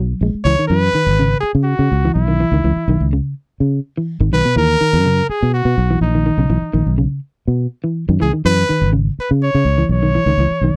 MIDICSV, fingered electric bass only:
0, 0, Header, 1, 3, 480
1, 0, Start_track
1, 0, Tempo, 483871
1, 452, Time_signature, 4, 2, 24, 8
1, 10674, End_track
2, 0, Start_track
2, 0, Title_t, "Fingered electric bass"
2, 0, Program_c, 0, 33
2, 0, Note_on_c, 0, 35, 75
2, 125, Note_off_c, 0, 35, 0
2, 209, Note_on_c, 0, 34, 86
2, 304, Note_off_c, 0, 34, 0
2, 444, Note_on_c, 0, 37, 89
2, 541, Note_off_c, 0, 37, 0
2, 692, Note_on_c, 0, 42, 90
2, 875, Note_off_c, 0, 42, 0
2, 1055, Note_on_c, 0, 32, 75
2, 1327, Note_off_c, 0, 32, 0
2, 1534, Note_on_c, 0, 49, 91
2, 1718, Note_off_c, 0, 49, 0
2, 1774, Note_on_c, 0, 49, 86
2, 1864, Note_off_c, 0, 49, 0
2, 1900, Note_on_c, 0, 37, 91
2, 2080, Note_off_c, 0, 37, 0
2, 2137, Note_on_c, 0, 35, 89
2, 2412, Note_off_c, 0, 35, 0
2, 2496, Note_on_c, 0, 37, 88
2, 2585, Note_off_c, 0, 37, 0
2, 2620, Note_on_c, 0, 37, 101
2, 2712, Note_off_c, 0, 37, 0
2, 2853, Note_on_c, 0, 35, 101
2, 2948, Note_off_c, 0, 35, 0
2, 2981, Note_on_c, 0, 37, 90
2, 3162, Note_off_c, 0, 37, 0
2, 3574, Note_on_c, 0, 49, 78
2, 3757, Note_off_c, 0, 49, 0
2, 4170, Note_on_c, 0, 32, 108
2, 4261, Note_off_c, 0, 32, 0
2, 4280, Note_on_c, 0, 35, 94
2, 4379, Note_off_c, 0, 35, 0
2, 4524, Note_on_c, 0, 39, 89
2, 4710, Note_off_c, 0, 39, 0
2, 4892, Note_on_c, 0, 42, 85
2, 5164, Note_off_c, 0, 42, 0
2, 5382, Note_on_c, 0, 47, 88
2, 5562, Note_off_c, 0, 47, 0
2, 5606, Note_on_c, 0, 47, 87
2, 5698, Note_off_c, 0, 47, 0
2, 5730, Note_on_c, 0, 35, 102
2, 5913, Note_off_c, 0, 35, 0
2, 5962, Note_on_c, 0, 34, 91
2, 6241, Note_off_c, 0, 34, 0
2, 6324, Note_on_c, 0, 35, 81
2, 6417, Note_off_c, 0, 35, 0
2, 6444, Note_on_c, 0, 35, 99
2, 6541, Note_off_c, 0, 35, 0
2, 6684, Note_on_c, 0, 34, 97
2, 6781, Note_off_c, 0, 34, 0
2, 6810, Note_on_c, 0, 35, 86
2, 6994, Note_off_c, 0, 35, 0
2, 7415, Note_on_c, 0, 47, 76
2, 7596, Note_off_c, 0, 47, 0
2, 8021, Note_on_c, 0, 42, 98
2, 8107, Note_off_c, 0, 42, 0
2, 8153, Note_on_c, 0, 37, 90
2, 8238, Note_off_c, 0, 37, 0
2, 8380, Note_on_c, 0, 42, 86
2, 8559, Note_off_c, 0, 42, 0
2, 8743, Note_on_c, 0, 32, 82
2, 9010, Note_off_c, 0, 32, 0
2, 9233, Note_on_c, 0, 49, 90
2, 9408, Note_off_c, 0, 49, 0
2, 9469, Note_on_c, 0, 49, 88
2, 9552, Note_off_c, 0, 49, 0
2, 9573, Note_on_c, 0, 37, 96
2, 9755, Note_off_c, 0, 37, 0
2, 9812, Note_on_c, 0, 35, 93
2, 10088, Note_off_c, 0, 35, 0
2, 10178, Note_on_c, 0, 37, 77
2, 10265, Note_off_c, 0, 37, 0
2, 10292, Note_on_c, 0, 37, 84
2, 10386, Note_off_c, 0, 37, 0
2, 10529, Note_on_c, 0, 35, 91
2, 10624, Note_off_c, 0, 35, 0
2, 10674, End_track
3, 0, Start_track
3, 0, Title_t, "Muted fingered electric bass strokes"
3, 343, Note_on_c, 9, 29, 35
3, 442, Note_off_c, 9, 29, 0
3, 923, Note_on_c, 9, 29, 37
3, 1022, Note_off_c, 9, 29, 0
3, 1416, Note_on_c, 9, 29, 34
3, 1515, Note_off_c, 9, 29, 0
3, 4771, Note_on_c, 9, 29, 36
3, 4870, Note_off_c, 9, 29, 0
3, 5250, Note_on_c, 9, 29, 35
3, 5350, Note_off_c, 9, 29, 0
3, 8628, Note_on_c, 9, 29, 33
3, 8727, Note_off_c, 9, 29, 0
3, 9112, Note_on_c, 9, 29, 33
3, 9212, Note_off_c, 9, 29, 0
3, 10674, End_track
0, 0, End_of_file